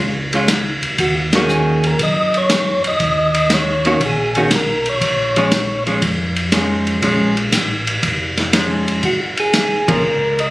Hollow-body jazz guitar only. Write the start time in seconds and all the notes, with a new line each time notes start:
0.34 G#3 C#4 F4
1.35 D#3 A#3 C#4 F#4
3.85 D#3 A#3 C#4 F#4
4.36 D#3 A#3 C#4 F#4
5.37 F3 G#3 C#4
5.87 F3 G#3 C#4
6.52 F3 G#3 C#4
7.03 F3 G#3 C#4
8.54 F3 G#3 C#4
9.88 F3 A#3 C#4